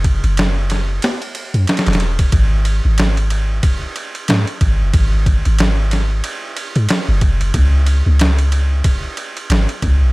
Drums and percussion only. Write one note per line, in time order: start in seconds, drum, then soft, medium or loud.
0.04 kick loud
0.04 ride medium
0.24 ride soft
0.37 snare loud
0.37 ride medium
0.70 snare soft
0.70 ride medium
1.02 snare loud
1.02 ride medium
1.22 ride soft
1.35 ride medium
1.54 ride soft
1.67 snare medium
1.67 ride medium
1.77 snare medium
1.77 ride medium
1.86 snare medium
1.86 ride medium
1.93 snare medium
1.93 ride medium
2.00 ride medium
2.19 kick loud
2.19 ride medium
2.32 kick loud
2.32 ride medium
2.65 ride medium
2.98 snare loud
2.98 ride medium
3.17 ride soft
3.30 ride medium
3.63 kick loud
3.63 ride medium
3.96 ride medium
4.15 ride soft
4.28 snare loud
4.28 ride medium
4.47 ride soft
4.61 kick medium
4.61 ride medium
4.94 kick loud
4.94 ride medium
5.26 kick medium
5.26 ride medium
5.45 ride soft
5.59 snare loud
5.59 ride medium
5.91 snare soft
5.91 ride medium
6.24 ride medium
6.57 ride medium
6.76 ride soft
6.89 snare loud
6.89 ride medium
7.21 kick loud
7.21 ride medium
7.41 ride soft
7.54 kick loud
7.54 ride medium
7.86 ride medium
8.19 snare loud
8.19 ride medium
8.39 ride soft
8.52 ride medium
8.84 kick loud
8.84 ride medium
9.17 ride medium
9.37 ride soft
9.50 snare loud
9.50 ride medium
9.69 ride soft
9.82 kick loud
9.82 ride medium